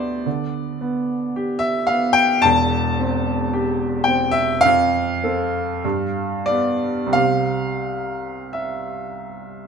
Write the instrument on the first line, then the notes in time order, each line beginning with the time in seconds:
grand piano
Already playing: D2 B3 G4 C5 D5
0.26 D3
0.81 B3
1.36 G4
1.59 E5
1.87 B3 F5
2.13 G5
2.42 E1 E2 A5
2.99 C4
3.53 G4
4.04 C4 G5
4.31 E5
4.61 F5
4.65 F2
5.24 C4 A4
5.85 G2
6.46 B3 G4 D5
7.06 C2
7.12 C3 C4 G4 F5
8.53 E5